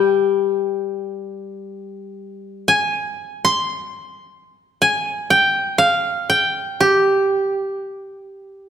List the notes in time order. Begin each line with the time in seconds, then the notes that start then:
Already playing: G3 D5 F5 G5
2.68 G#5
3.45 C6
4.82 G#5
5.30 G5
5.78 F5
6.30 G5
6.80 G4